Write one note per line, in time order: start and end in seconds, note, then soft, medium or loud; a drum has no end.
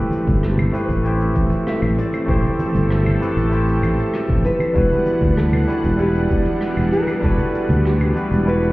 0.00 1.94 G3 medium
0.00 0.69 A3 loud
0.00 4.72 A3 medium
0.00 0.69 C4 loud
0.00 4.72 C4 medium
0.00 0.70 E4 medium
0.00 0.71 G4 loud
0.00 0.71 B4 loud
0.11 high conga medium
0.11 cabasa medium
0.27 0.69 G1 medium
0.27 kick loud
0.27 low conga medium
0.27 cabasa medium
0.43 0.72 A4 medium
0.43 cross-stick loud
0.43 cabasa medium
0.58 low conga medium
0.58 cabasa soft
0.58 claves medium
0.72 1.00 A3 medium
0.72 1.01 C4 medium
0.72 1.01 E4 medium
0.72 1.01 G4 medium
0.72 1.02 B4 medium
0.72 1.67 C5 loud
0.72 muted conga medium
0.72 cabasa loud
0.89 1.31 A1 loud
0.89 kick medium
0.89 cabasa medium
1.02 2.23 A3 medium
1.02 2.24 C4 medium
1.02 2.25 E4 medium
1.02 2.25 G4 medium
1.02 cabasa medium
1.07 2.26 C5 loud
1.21 cabasa soft
1.36 1.48 A1 medium
1.36 kick loud
1.36 cabasa medium
1.50 muted conga medium
1.50 cabasa soft
1.67 1.76 E5 loud
1.67 cross-stick loud
1.67 cabasa medium
1.82 1.95 A1 medium
1.82 cabasa soft
1.82 claves medium
1.97 4.73 A4 medium
1.97 2.29 D5 loud
1.97 cabasa medium
2.13 muted conga medium
2.13 cabasa soft
2.13 claves medium
2.26 2.41 A1 loud
2.26 3.16 A3 loud
2.26 3.17 C4 medium
2.26 3.17 E4 medium
2.26 3.18 G4 loud
2.26 4.10 C5 medium
2.26 kick loud
2.26 cabasa medium
2.31 3.19 C5 loud
2.44 low conga medium
2.44 cabasa soft
2.59 high conga medium
2.59 cabasa medium
2.74 3.17 G1 medium
2.74 low conga medium
2.74 cabasa medium
2.90 cross-stick loud
2.90 cabasa medium
3.05 low conga medium
3.05 cabasa soft
3.05 claves medium
3.20 3.48 A3 medium
3.20 3.48 C4 medium
3.20 3.48 E4 medium
3.20 3.49 G4 medium
3.20 3.49 B4 medium
3.20 muted conga medium
3.20 cabasa medium
3.37 3.79 A1 medium
3.37 cabasa soft
3.49 4.71 A3 medium
3.49 4.71 C4 medium
3.49 4.72 E4 medium
3.49 4.73 G4 medium
3.49 cabasa medium
3.55 4.73 C5 loud
3.69 cabasa soft
3.82 3.96 A1 medium
3.82 muted conga soft
3.82 cabasa medium
3.82 claves medium
3.98 cabasa soft
4.14 cross-stick loud
4.14 cabasa medium
4.29 4.42 A1 medium
4.29 kick loud
4.29 high conga medium
4.29 cabasa soft
4.45 5.30 B4 loud
4.45 muted conga medium
4.45 cabasa medium
4.60 high conga medium
4.60 cabasa medium
4.60 claves medium
4.73 4.89 E1 loud
4.73 8.73 E3 medium
4.73 5.63 G3 loud
4.73 8.73 G3 medium
4.73 8.73 B3 medium
4.73 5.64 D4 medium
4.73 8.73 D4 medium
4.73 5.65 E4 medium
4.73 5.65 F#4 medium
4.73 8.73 F#5 medium
4.73 kick loud
4.73 cabasa medium
4.78 5.66 B4 loud
4.91 low conga medium
4.91 cabasa soft
5.06 high conga medium
5.06 cabasa medium
5.21 5.64 D2 medium
5.21 kick loud
5.21 low conga medium
5.21 cabasa medium
5.31 5.37 B4 medium
5.37 5.95 A4 loud
5.37 cross-stick medium
5.37 cabasa medium
5.53 low conga medium
5.53 cabasa soft
5.53 claves medium
5.67 5.95 G3 medium
5.67 5.95 D4 medium
5.67 5.96 E4 medium
5.67 5.96 F#4 medium
5.67 5.96 B4 medium
5.67 muted conga medium
5.67 cabasa medium
5.84 6.26 E1 medium
5.84 kick medium
5.84 cabasa medium
5.97 7.18 G3 loud
5.97 7.19 D4 medium
5.97 7.19 E4 medium
5.97 6.92 G4 loud
5.97 7.20 F#5 medium
5.97 cabasa medium
6.02 7.21 B4 loud
6.15 cabasa soft
6.30 6.43 E1 loud
6.30 kick loud
6.30 cabasa medium
6.46 muted conga medium
6.46 cabasa soft
6.61 cross-stick medium
6.61 cabasa medium
6.77 6.90 E1 medium
6.77 cabasa soft
6.77 claves medium
6.92 7.23 B4 loud
6.92 cabasa medium
7.07 muted conga medium
7.07 cabasa medium
7.07 claves medium
7.20 7.36 E1 loud
7.20 8.11 G3 loud
7.20 8.11 D4 medium
7.20 8.12 E4 medium
7.20 8.13 F#4 medium
7.20 7.81 A4 loud
7.20 kick loud
7.20 cabasa medium
7.25 8.13 B4 loud
7.38 low conga medium
7.38 cabasa soft
7.55 cabasa medium
7.69 8.12 D2 loud
7.69 low conga medium
7.69 cabasa medium
7.85 8.43 G4 medium
7.85 cross-stick medium
7.85 cabasa medium
8.00 low conga medium
8.00 cabasa soft
8.00 claves medium
8.14 8.42 G3 medium
8.14 8.43 D4 medium
8.14 8.43 E4 medium
8.14 8.43 F#4 medium
8.14 8.44 B4 loud
8.14 muted conga medium
8.14 cabasa medium
8.31 8.73 E1 loud
8.31 cabasa medium
8.44 8.73 G3 loud
8.44 8.73 D4 medium
8.44 8.73 E4 medium
8.44 8.73 F#4 medium
8.44 8.73 B4 medium
8.48 8.73 B4 loud
8.48 cabasa medium
8.63 cabasa soft